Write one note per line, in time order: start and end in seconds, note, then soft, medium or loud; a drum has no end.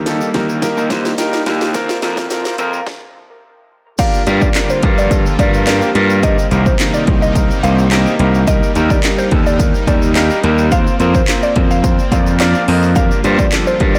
0.00 0.20 D#2 medium
0.00 1.73 D#3 medium
0.00 1.70 G3 medium
0.00 2.83 A#3 medium
0.06 0.28 A#3 medium
0.06 0.28 D#4 medium
0.06 0.28 G4 medium
0.06 0.28 A4 loud
0.06 snare medium
0.06 closed hi-hat loud
0.06 shaker medium
0.21 shaker medium
0.34 0.66 D#2 medium
0.34 0.42 G3 medium
0.34 0.56 A#3 medium
0.34 0.56 D#4 medium
0.34 0.56 G4 medium
0.34 0.56 A#4 medium
0.34 kick loud
0.34 snare medium
0.34 closed hi-hat medium
0.49 0.56 A#4 medium
0.49 shaker soft
0.62 0.70 G3 medium
0.62 0.84 A#3 loud
0.62 0.84 D#4 loud
0.62 0.84 G4 loud
0.62 0.84 A#4 loud
0.62 kick medium
0.62 snare loud
0.62 closed hi-hat medium
0.62 shaker medium
0.77 0.87 D#2 medium
0.77 0.84 D#5 medium
0.77 shaker soft
0.90 1.11 D#2 loud
0.90 0.98 G3 medium
0.90 1.12 A#3 medium
0.90 1.12 D#4 medium
0.90 1.12 G4 medium
0.90 1.12 C5 loud
0.90 kick medium
0.90 snare loud
0.90 closed hi-hat medium
0.90 shaker medium
1.05 1.12 A#3 medium
1.05 snare loud
1.05 shaker soft
1.18 1.26 G3 medium
1.18 1.40 A#3 medium
1.18 1.40 D#4 medium
1.18 1.40 G4 medium
1.18 1.40 A#4 loud
1.18 snare loud
1.18 closed hi-hat loud
1.18 shaker medium
1.33 1.40 D#4 medium
1.33 snare loud
1.33 shaker medium
1.46 1.88 D#2 medium
1.46 1.54 G3 medium
1.46 1.68 A#3 medium
1.46 1.68 D#4 medium
1.46 1.68 G4 medium
1.46 1.68 A#4 medium
1.46 snare loud
1.46 closed hi-hat medium
1.46 shaker soft
1.61 1.68 G4 medium
1.61 snare loud
1.61 shaker medium
1.74 2.86 C3 medium
1.74 1.82 F3 loud
1.74 2.86 F3 medium
1.74 1.96 A#3 loud
1.74 1.96 C4 loud
1.74 1.96 F4 loud
1.74 1.96 A#4 loud
1.74 kick loud
1.74 snare loud
1.74 closed hi-hat medium
1.74 shaker medium
1.89 snare loud
1.89 shaker soft
2.02 2.44 F2 loud
2.02 2.10 F3 medium
2.02 2.24 A#3 medium
2.02 2.24 C4 medium
2.02 2.24 F4 medium
2.02 2.24 A#4 medium
2.02 snare loud
2.02 closed hi-hat medium
2.02 shaker medium
2.17 2.24 C4 medium
2.17 kick loud
2.17 snare loud
2.17 shaker medium
2.30 2.52 A#3 medium
2.30 2.52 C4 medium
2.30 2.52 F4 medium
2.30 2.52 A#4 loud
2.30 snare loud
2.30 closed hi-hat loud
2.30 shaker medium
2.45 snare loud
2.45 shaker medium
2.58 2.79 F2 medium
2.58 2.66 F3 medium
2.58 2.80 A#3 medium
2.58 2.80 C4 medium
2.58 2.80 F4 medium
2.58 2.80 A#4 loud
2.58 closed hi-hat medium
2.58 shaker medium
2.73 2.80 A#4 medium
2.73 shaker soft
2.86 kick loud
2.86 snare medium
3.98 6.21 D3 medium
3.98 6.21 F3 medium
3.98 10.68 G3 medium
3.98 4.20 A#3 loud
3.98 6.21 A#3 medium
3.98 4.20 D4 medium
3.98 4.20 F4 medium
3.98 6.21 F4 loud
3.98 4.20 G4 medium
3.98 4.20 A#4 loud
3.98 4.22 F5 loud
3.98 kick loud
3.98 closed hi-hat medium
3.98 crash loud
3.98 shaker medium
4.14 shaker soft
4.27 4.48 G2 loud
4.27 4.48 A#3 loud
4.27 4.48 D4 medium
4.27 4.48 F4 medium
4.27 4.48 G4 medium
4.27 4.48 A#4 loud
4.27 closed hi-hat medium
4.27 shaker medium
4.41 4.53 D5 medium
4.41 kick loud
4.41 shaker medium
4.55 4.76 A#3 medium
4.55 4.76 D4 medium
4.55 4.76 F4 medium
4.55 4.76 G4 medium
4.55 4.76 A#4 medium
4.55 snare medium
4.55 clap loud
4.55 closed hi-hat loud
4.55 shaker medium
4.69 4.81 C5 medium
4.69 shaker medium
4.83 5.25 G2 medium
4.83 5.04 A#3 medium
4.83 5.04 D4 medium
4.83 5.04 F4 medium
4.83 5.04 G4 medium
4.83 5.04 A#4 medium
4.83 kick loud
4.83 closed hi-hat medium
4.98 5.21 D5 medium
4.98 shaker soft
5.11 5.32 A#3 medium
5.11 5.32 D4 medium
5.11 5.33 F4 medium
5.11 5.33 G4 medium
5.11 5.33 A4 medium
5.11 kick medium
5.11 closed hi-hat medium
5.11 shaker medium
5.26 shaker soft
5.39 5.80 G2 loud
5.39 5.60 A#3 medium
5.39 5.60 D4 medium
5.39 5.61 F4 medium
5.39 5.61 G4 medium
5.39 5.61 A#4 medium
5.39 5.52 D5 medium
5.39 kick medium
5.39 closed hi-hat medium
5.39 shaker medium
5.54 shaker medium
5.67 5.88 A#3 loud
5.67 5.88 D4 loud
5.67 5.88 F4 loud
5.67 5.88 G4 loud
5.67 5.89 A#4 loud
5.67 snare loud
5.67 clap loud
5.67 closed hi-hat loud
5.67 shaker medium
5.82 shaker medium
5.95 6.37 G2 loud
5.95 6.16 A#3 medium
5.95 6.16 D4 medium
5.95 6.16 F4 medium
5.95 6.17 G4 medium
5.95 6.17 A#4 loud
5.95 closed hi-hat medium
6.10 shaker medium
6.23 8.45 C3 medium
6.23 8.45 D#3 medium
6.23 6.44 A#3 loud
6.23 8.45 A#3 medium
6.23 6.44 C4 medium
6.23 6.45 D#4 medium
6.23 8.45 D#4 medium
6.23 6.45 G4 medium
6.23 6.45 A#4 loud
6.23 6.46 D#5 loud
6.23 kick loud
6.23 closed hi-hat medium
6.23 shaker medium
6.39 shaker medium
6.51 6.72 C2 loud
6.51 6.72 A#3 loud
6.51 6.73 C4 loud
6.51 6.73 D#4 medium
6.51 6.73 G4 loud
6.51 6.73 A#4 loud
6.51 closed hi-hat medium
6.51 shaker medium
6.66 6.77 C5 medium
6.66 kick loud
6.66 shaker medium
6.79 7.00 A#3 medium
6.79 7.01 C4 medium
6.79 7.01 D#4 medium
6.79 7.01 G4 medium
6.79 7.01 A#4 medium
6.79 snare medium
6.79 clap loud
6.79 closed hi-hat loud
6.79 shaker medium
6.94 7.05 D5 medium
6.94 shaker medium
7.07 7.49 C2 loud
7.07 7.29 A#3 medium
7.07 7.29 C4 medium
7.07 7.29 D#4 medium
7.07 7.29 G4 medium
7.07 7.29 A#4 medium
7.07 kick loud
7.07 closed hi-hat medium
7.22 7.45 D#5 medium
7.22 shaker soft
7.35 7.57 A#3 medium
7.35 7.57 C4 medium
7.35 7.57 D#4 medium
7.35 7.57 G4 medium
7.35 7.57 A#4 medium
7.35 kick medium
7.35 closed hi-hat medium
7.35 shaker medium
7.51 shaker soft
7.63 8.05 C2 loud
7.63 7.85 A#3 medium
7.63 7.85 C4 medium
7.63 7.85 D#4 medium
7.63 7.85 G4 medium
7.63 7.85 C5 medium
7.63 7.76 F5 medium
7.63 closed hi-hat medium
7.63 shaker medium
7.79 shaker medium
7.91 8.13 A#3 loud
7.91 8.13 C4 loud
7.91 8.13 D#4 loud
7.91 8.13 G4 loud
7.91 8.13 A#4 loud
7.91 snare loud
7.91 clap loud
7.91 closed hi-hat loud
7.91 shaker medium
8.06 shaker medium
8.19 8.61 C2 medium
8.19 8.41 A#3 medium
8.19 8.41 C4 medium
8.19 8.41 D#4 medium
8.19 8.41 G4 medium
8.19 8.41 A#4 loud
8.19 closed hi-hat medium
8.34 shaker medium
8.47 8.69 G3 loud
8.47 12.92 A#3 medium
8.47 8.69 A#3 medium
8.47 10.69 D#4 medium
8.47 8.69 D#4 medium
8.47 8.69 G4 medium
8.47 8.69 A#4 loud
8.47 8.71 D#5 loud
8.47 kick loud
8.47 closed hi-hat medium
8.47 shaker medium
8.63 shaker medium
8.75 8.96 D#2 loud
8.75 8.97 G3 loud
8.75 8.97 A#3 medium
8.75 8.97 D#4 medium
8.75 8.97 G4 medium
8.75 8.97 A#4 loud
8.75 closed hi-hat medium
8.75 shaker medium
8.90 9.01 D5 medium
8.90 kick medium
8.90 shaker medium
9.04 9.25 G3 medium
9.04 9.25 A#3 medium
9.04 9.25 D#4 medium
9.04 9.25 G4 medium
9.04 9.25 A#4 medium
9.04 snare medium
9.04 clap loud
9.04 closed hi-hat loud
9.04 shaker medium
9.18 9.29 C5 medium
9.18 shaker medium
9.31 9.73 D#2 medium
9.31 9.53 G3 medium
9.31 9.53 A#3 medium
9.31 9.53 D#4 medium
9.31 9.53 G4 medium
9.31 9.53 A4 medium
9.31 kick loud
9.31 closed hi-hat medium
9.47 9.70 D5 medium
9.47 shaker soft
9.59 9.81 G3 medium
9.59 9.81 A#3 medium
9.59 9.81 D#4 medium
9.59 9.81 G4 medium
9.59 9.81 A#4 medium
9.59 kick medium
9.59 closed hi-hat medium
9.59 shaker medium
9.75 shaker soft
9.87 10.29 D#2 loud
9.87 10.09 G3 medium
9.87 10.09 A#3 medium
9.87 10.09 D#4 medium
9.87 10.09 G4 medium
9.87 10.09 A#4 medium
9.87 10.00 D5 medium
9.87 kick medium
9.87 closed hi-hat medium
9.87 shaker medium
10.02 shaker soft
10.15 10.37 G3 loud
10.15 10.37 A#3 loud
10.15 10.37 D#4 loud
10.15 10.37 G4 loud
10.15 10.37 A#4 loud
10.15 snare loud
10.15 clap loud
10.15 closed hi-hat loud
10.15 shaker medium
10.30 shaker medium
10.43 10.85 D#2 medium
10.43 10.65 G3 loud
10.43 10.65 A#3 medium
10.43 10.65 D#4 medium
10.43 10.65 G4 medium
10.43 10.65 A#4 loud
10.43 closed hi-hat medium
10.58 shaker medium
10.71 13.99 F3 medium
10.71 10.93 A#3 loud
10.71 12.94 C4 medium
10.71 10.93 C4 medium
10.71 10.93 F4 medium
10.71 10.93 A#4 loud
10.71 10.93 C5 loud
10.71 10.95 F5 loud
10.71 kick loud
10.71 closed hi-hat medium
10.71 shaker medium
10.87 shaker medium
11.00 11.21 F2 medium
11.00 11.21 A#3 loud
11.00 11.21 C4 medium
11.00 11.21 F4 medium
11.00 11.21 A#4 medium
11.00 11.21 C5 loud
11.00 closed hi-hat medium
11.00 shaker medium
11.14 11.26 C5 medium
11.14 kick loud
11.14 shaker medium
11.28 11.49 A#3 medium
11.28 11.49 C4 medium
11.28 11.49 F4 medium
11.28 11.49 A#4 medium
11.28 11.49 C5 medium
11.28 snare medium
11.28 clap loud
11.28 closed hi-hat loud
11.28 shaker medium
11.43 11.54 D5 medium
11.43 shaker medium
11.56 11.98 F2 medium
11.56 11.77 A#3 medium
11.56 11.77 C4 medium
11.56 11.77 F4 medium
11.56 11.77 A#4 medium
11.56 11.77 C5 medium
11.56 kick loud
11.56 closed hi-hat medium
11.71 11.94 F5 medium
11.71 shaker soft
11.84 12.05 A#3 medium
11.84 12.05 C4 medium
11.84 12.05 F4 medium
11.84 12.05 A#4 medium
11.84 12.05 C5 medium
11.84 kick medium
11.84 closed hi-hat medium
11.84 shaker medium
11.99 shaker soft
12.12 12.53 F2 medium
12.12 12.33 A#3 medium
12.12 12.33 C4 medium
12.12 12.33 F4 medium
12.12 12.33 A#4 medium
12.12 12.33 D5 medium
12.12 12.24 F5 medium
12.12 kick medium
12.12 closed hi-hat medium
12.12 shaker medium
12.27 shaker soft
12.40 12.61 A#3 loud
12.40 12.61 C4 loud
12.40 12.61 F4 loud
12.40 12.61 A#4 loud
12.40 12.61 D5 loud
12.40 snare loud
12.40 clap loud
12.40 closed hi-hat loud
12.40 shaker medium
12.54 shaker medium
12.68 13.10 F2 loud
12.68 12.89 A#3 medium
12.68 12.89 C4 medium
12.68 12.90 F4 medium
12.68 12.90 A#4 medium
12.68 12.90 D#5 loud
12.68 open hi-hat medium
12.83 shaker medium
12.95 13.99 D3 medium
12.95 13.99 G3 medium
12.95 13.99 A#3 medium
12.95 13.17 A#3 loud
12.95 13.17 D4 medium
12.95 13.99 F4 medium
12.95 13.18 F4 medium
12.95 13.18 G4 medium
12.95 13.18 A#4 loud
12.95 13.19 F5 loud
12.95 kick loud
12.95 closed hi-hat medium
12.95 shaker medium
13.11 shaker soft
13.24 13.45 G2 medium
13.24 13.46 A#3 loud
13.24 13.46 D4 medium
13.24 13.46 F4 medium
13.24 13.46 G4 medium
13.24 13.46 C5 loud
13.24 closed hi-hat medium
13.24 shaker medium
13.39 13.50 D5 medium
13.39 kick medium
13.39 shaker medium
13.52 13.74 A#3 medium
13.52 13.74 D4 medium
13.52 13.74 F4 medium
13.52 13.74 G4 medium
13.52 13.74 A4 medium
13.52 snare medium
13.52 clap loud
13.52 closed hi-hat loud
13.52 shaker medium
13.67 13.78 C5 medium
13.67 shaker medium
13.80 13.99 G2 medium
13.80 13.99 A#3 medium
13.80 13.99 D4 medium
13.80 13.99 F4 medium
13.80 13.99 G4 medium
13.80 13.99 A#4 medium
13.80 kick loud
13.80 closed hi-hat medium
13.95 13.99 D5 medium
13.95 shaker soft